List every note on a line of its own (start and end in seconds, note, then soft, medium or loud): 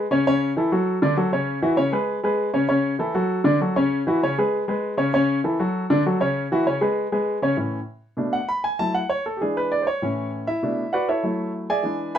0.11 0.23 C#3 medium
0.11 0.23 C#4 loud
0.11 0.24 C#5 medium
0.27 0.51 C#3 medium
0.27 0.52 C#4 medium
0.27 0.51 C#5 loud
0.57 0.69 E3 medium
0.57 0.69 E4 medium
0.57 0.69 A4 medium
0.72 0.97 F#3 medium
0.72 0.97 F#4 medium
0.72 0.97 A4 medium
1.02 1.14 D3 medium
1.02 1.15 D4 medium
1.02 1.15 D5 medium
1.17 1.29 F#3 medium
1.17 1.30 F#4 medium
1.17 1.30 A4 medium
1.32 1.57 C#3 medium
1.32 1.58 C#4 medium
1.32 1.58 C#5 medium
1.62 1.75 E3 medium
1.62 1.75 E4 medium
1.62 1.75 F#4 medium
1.77 1.90 C#3 medium
1.77 1.90 C#4 medium
1.77 1.90 C#5 medium
1.92 2.18 G#3 medium
1.92 2.18 G#4 medium
1.92 2.18 B4 medium
2.23 2.49 G#3 medium
2.23 2.49 G#4 medium
2.23 2.49 B4 medium
2.54 2.66 C#3 medium
2.54 2.66 C#4 medium
2.54 2.66 C#5 medium
2.68 2.94 C#3 medium
2.68 2.94 C#4 medium
2.68 2.94 C#5 medium
2.99 3.12 E3 medium
2.99 3.12 E4 medium
2.99 3.12 A4 medium
3.15 3.40 F#3 medium
3.15 3.40 F#4 medium
3.15 3.40 A4 medium
3.44 3.57 D3 medium
3.44 3.58 D4 medium
3.44 3.58 D5 medium
3.61 3.73 F#3 medium
3.61 3.74 F#4 medium
3.61 3.74 A4 medium
3.76 4.01 C#3 medium
3.76 4.01 C#4 medium
3.76 4.01 C#5 medium
4.07 4.19 E3 medium
4.07 4.20 E4 medium
4.07 4.20 F#4 medium
4.23 4.35 C#3 medium
4.23 4.35 C#4 medium
4.23 4.35 C#5 medium
4.38 4.63 G#3 medium
4.38 4.63 G#4 medium
4.38 4.63 B4 medium
4.68 4.93 G#3 medium
4.68 4.93 G#4 medium
4.68 4.93 B4 medium
4.97 5.10 C#3 loud
4.97 5.10 C#4 medium
4.97 5.10 C#5 medium
5.13 5.38 C#3 medium
5.13 5.39 C#4 medium
5.13 5.39 C#5 loud
5.44 5.56 E3 medium
5.44 5.57 E4 medium
5.44 5.57 A4 medium
5.59 5.84 F#3 medium
5.59 5.84 F#4 medium
5.59 5.85 A4 medium
5.90 6.02 D3 medium
5.90 6.02 D4 medium
5.90 6.02 D5 medium
6.06 6.18 F#3 medium
6.06 6.18 F#4 medium
6.06 6.18 A4 medium
6.20 6.45 C#3 medium
6.20 6.45 C#4 medium
6.20 6.45 C#5 medium
6.52 6.64 E3 medium
6.52 6.64 E4 medium
6.52 6.64 F#4 medium
6.66 6.78 C#3 medium
6.66 6.79 C#4 medium
6.66 6.79 C#5 medium
6.81 7.06 G#3 medium
6.81 7.06 G#4 medium
6.81 7.07 B4 medium
7.12 7.37 G#3 medium
7.12 7.37 G#4 medium
7.12 7.37 B4 medium
7.42 7.55 C#3 medium
7.42 7.55 C#4 medium
7.42 7.55 C#5 medium
7.57 7.77 A2 medium
7.57 7.77 E3 medium
7.57 7.78 C#4 medium
8.17 8.38 B2 medium
8.17 8.38 A3 medium
8.17 8.38 D4 medium
8.33 8.48 F#5 medium
8.49 8.63 B5 medium
8.64 8.79 G#5 medium
8.79 8.99 F#3 medium
8.79 9.00 A3 medium
8.79 9.00 E4 medium
8.79 8.94 A5 loud
8.94 9.09 F#5 medium
9.10 9.24 C#5 medium
9.26 9.40 A4 medium
9.37 9.39 G4 medium
9.41 9.84 E3 medium
9.41 9.84 G#3 medium
9.41 9.85 D4 medium
9.41 9.56 G#4 medium
9.57 9.71 B4 medium
9.72 9.86 D5 medium
9.82 9.84 C5 medium
9.87 10.29 C#5 medium
10.02 10.45 A2 medium
10.02 10.45 E3 medium
10.02 10.46 C#4 medium
10.47 10.90 E4 medium
10.47 10.90 E5 medium
10.63 10.83 B2 medium
10.63 10.83 A3 medium
10.63 10.83 D4 medium
10.93 11.08 F#4 medium
10.93 11.08 B4 medium
10.93 11.08 D5 medium
10.93 11.07 F#5 medium
11.09 11.23 E4 medium
11.09 11.51 A4 medium
11.09 11.51 C#5 medium
11.09 11.51 E5 medium
11.23 11.67 F#3 medium
11.23 11.67 A3 medium
11.23 11.67 E4 medium
11.70 12.12 G#4 medium
11.70 12.12 D5 medium
11.70 12.12 E5 medium
11.70 12.12 G#5 medium
11.83 12.18 E3 medium
11.83 12.18 G#3 soft
11.83 12.18 D4 medium
12.15 12.18 E5 medium
12.15 12.18 B5 loud